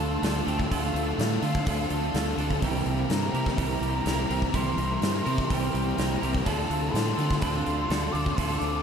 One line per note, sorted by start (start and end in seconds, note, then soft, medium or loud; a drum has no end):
0.00 0.17 D2 medium
0.00 0.21 D3 medium
0.00 0.21 A3 medium
0.00 0.22 A3 medium
0.00 0.47 C4 medium
0.00 0.22 D4 medium
0.00 0.23 F4 medium
0.00 1.19 F4 medium
0.00 0.23 A4 medium
0.00 0.49 A5 loud
0.22 0.41 D2 medium
0.22 0.69 D3 medium
0.22 0.70 A3 medium
0.22 0.94 A3 medium
0.22 0.48 D4 medium
0.22 0.48 F4 medium
0.22 0.46 A4 medium
0.22 snare loud
0.22 open hi-hat medium
0.47 0.65 D2 medium
0.47 1.66 C4 medium
0.47 0.70 D4 soft
0.47 0.71 F4 medium
0.47 0.72 A4 medium
0.47 0.71 G5 medium
0.47 open hi-hat soft
0.60 kick medium
0.71 0.90 D2 medium
0.71 1.17 D3 medium
0.71 1.91 F3 medium
0.71 1.65 A3 medium
0.71 1.18 D4 medium
0.71 1.19 F4 medium
0.71 1.20 A4 loud
0.71 1.16 F5 medium
0.71 kick medium
0.71 open hi-hat medium
0.94 1.13 D2 medium
0.94 1.19 A3 medium
0.94 open hi-hat medium
1.18 1.37 A2 medium
1.18 1.65 D3 medium
1.18 2.14 A3 medium
1.18 1.44 D4 medium
1.18 1.43 F4 medium
1.18 1.41 A4 medium
1.18 snare loud
1.18 open hi-hat medium
1.42 1.61 D3 medium
1.42 1.66 D4 medium
1.42 1.90 F4 medium
1.42 1.67 F4 medium
1.42 1.68 A4 medium
1.42 1.87 F5 loud
1.42 open hi-hat soft
1.55 kick medium
1.66 1.85 D2 medium
1.66 2.14 D3 medium
1.66 2.13 A3 medium
1.66 2.39 C4 medium
1.66 2.15 D4 medium
1.66 2.16 F4 medium
1.66 2.16 A4 medium
1.66 kick medium
1.66 open hi-hat medium
1.90 2.09 D2 medium
1.90 2.63 F4 medium
1.90 open hi-hat soft
2.14 2.33 D2 medium
2.14 2.61 D3 medium
2.14 2.61 A3 medium
2.14 2.63 A3 medium
2.14 2.39 D4 medium
2.14 2.38 F4 medium
2.14 2.36 A4 medium
2.14 snare loud
2.14 open hi-hat medium
2.38 2.56 D2 medium
2.38 2.90 C4 medium
2.38 2.62 D4 soft
2.38 2.61 F4 medium
2.38 2.61 A4 medium
2.38 open hi-hat soft
2.51 kick medium
2.62 2.81 C2 medium
2.62 3.36 C3 medium
2.62 3.36 E3 medium
2.62 3.83 E3 medium
2.62 3.08 G3 medium
2.62 3.09 C4 medium
2.62 3.10 E4 medium
2.62 3.10 A#4 medium
2.62 3.12 G5 medium
2.62 kick medium
2.62 open hi-hat medium
2.85 3.04 C2 medium
2.85 3.09 A#3 medium
2.85 open hi-hat soft
3.08 3.29 G2 medium
3.08 3.36 G3 medium
3.08 4.05 A#3 medium
3.08 3.35 C4 medium
3.08 3.34 E4 medium
3.08 3.33 A#4 medium
3.08 3.58 A#5 medium
3.08 snare loud
3.08 open hi-hat medium
3.33 3.52 C3 medium
3.33 3.55 G3 medium
3.33 3.57 C4 medium
3.33 3.57 E4 medium
3.33 3.81 G4 medium
3.33 3.58 A#4 medium
3.33 open hi-hat soft
3.46 kick medium
3.46 snare soft
3.56 3.77 C2 medium
3.56 4.29 C3 medium
3.56 4.30 E3 medium
3.56 4.04 G3 medium
3.56 4.06 C4 medium
3.56 4.30 C4 medium
3.56 4.06 E4 medium
3.56 4.06 A#4 medium
3.56 kick loud
3.56 open hi-hat medium
3.61 4.57 A#5 medium
3.81 4.00 C2 medium
3.81 5.02 G4 medium
3.81 open hi-hat soft
4.05 4.24 C2 medium
4.05 4.29 G3 medium
4.05 4.77 A#3 medium
4.05 4.30 C4 medium
4.05 4.28 E4 medium
4.05 4.27 A#4 medium
4.05 snare loud
4.05 open hi-hat medium
4.28 4.49 C2 medium
4.28 4.52 G3 medium
4.28 4.54 C4 medium
4.28 5.50 C4 medium
4.28 4.53 E4 medium
4.28 4.54 A#4 medium
4.28 open hi-hat soft
4.42 kick medium
4.52 4.73 C2 medium
4.52 5.25 C3 medium
4.52 5.25 E3 medium
4.52 5.74 E3 medium
4.52 5.00 G3 medium
4.52 5.02 C4 medium
4.52 5.02 E4 medium
4.52 5.03 A#4 medium
4.52 5.03 C6 loud
4.52 kick medium
4.52 open hi-hat medium
4.77 4.96 C2 medium
4.77 5.01 A#3 medium
4.77 open hi-hat medium
5.01 5.20 G2 medium
5.01 5.27 G3 medium
5.01 5.97 A#3 medium
5.01 5.26 C4 medium
5.01 5.25 E4 medium
5.01 5.24 A#4 medium
5.01 5.54 C6 loud
5.01 snare loud
5.01 open hi-hat medium
5.25 5.45 C3 medium
5.25 5.47 G3 medium
5.25 5.49 C4 medium
5.25 5.49 E4 medium
5.25 5.73 G4 medium
5.25 5.50 A#4 medium
5.25 open hi-hat soft
5.38 kick medium
5.48 5.69 C2 medium
5.48 6.22 C3 medium
5.48 6.22 E3 medium
5.48 5.96 G3 medium
5.48 5.98 C4 medium
5.48 6.23 C4 medium
5.48 5.97 E4 medium
5.48 5.98 A#4 medium
5.48 kick loud
5.48 open hi-hat medium
5.53 6.23 G5 medium
5.74 5.93 C2 medium
5.74 6.46 G4 medium
5.74 open hi-hat medium
5.97 6.17 C2 medium
5.97 6.22 G3 medium
5.97 6.46 A#3 medium
5.97 6.23 C4 medium
5.97 6.21 E4 medium
5.97 6.20 A#4 medium
5.97 snare loud
5.97 open hi-hat medium
6.21 6.41 C2 medium
6.21 6.45 G3 medium
6.21 6.46 C4 medium
6.21 6.71 C4 medium
6.21 6.45 E4 medium
6.21 6.44 A#4 medium
6.21 open hi-hat soft
6.35 kick medium
6.45 6.65 D2 medium
6.45 6.94 D3 medium
6.45 6.94 A3 medium
6.45 6.95 D4 medium
6.45 6.96 F4 medium
6.45 6.97 A4 medium
6.45 6.96 A5 medium
6.45 kick medium
6.45 open hi-hat medium
6.70 6.89 D2 medium
6.70 7.42 C4 medium
6.70 open hi-hat soft
6.94 7.12 A2 medium
6.94 7.41 D3 medium
6.94 7.89 A3 medium
6.94 7.20 D4 medium
6.94 7.20 F4 medium
6.94 7.18 A4 medium
6.94 7.39 C6 medium
6.94 snare loud
6.94 open hi-hat medium
7.18 7.36 D3 medium
7.18 7.41 D4 medium
7.18 7.65 F4 medium
7.18 7.43 F4 medium
7.18 7.43 A4 medium
7.18 open hi-hat soft
7.31 kick medium
7.31 snare soft
7.40 7.60 D2 medium
7.40 7.88 D3 medium
7.40 8.13 C4 medium
7.40 7.89 D4 medium
7.40 8.14 C6 loud
7.40 kick loud
7.40 open hi-hat medium
7.44 7.90 F4 medium
7.44 7.91 A4 medium
7.66 7.85 D2 medium
7.66 8.83 F4 medium
7.66 open hi-hat soft
7.89 8.08 D2 medium
7.89 8.36 D3 medium
7.89 8.37 A3 medium
7.89 8.15 D4 medium
7.89 8.14 F4 medium
7.89 8.12 A4 medium
7.89 snare loud
7.89 open hi-hat medium
8.12 8.33 D2 medium
8.12 8.61 C4 medium
8.12 8.37 D4 medium
8.12 8.38 F4 medium
8.12 8.39 A4 medium
8.12 8.37 D6 medium
8.12 open hi-hat soft
8.26 kick medium
8.35 8.57 D2 medium
8.35 8.83 D3 medium
8.35 8.83 A3 medium
8.35 8.83 D4 medium
8.35 8.83 F4 medium
8.35 8.60 C6 loud
8.35 kick medium
8.35 open hi-hat medium
8.40 8.83 A4 medium
8.59 8.80 D2 medium
8.59 8.83 C4 medium
8.59 8.83 D6 medium
8.59 open hi-hat soft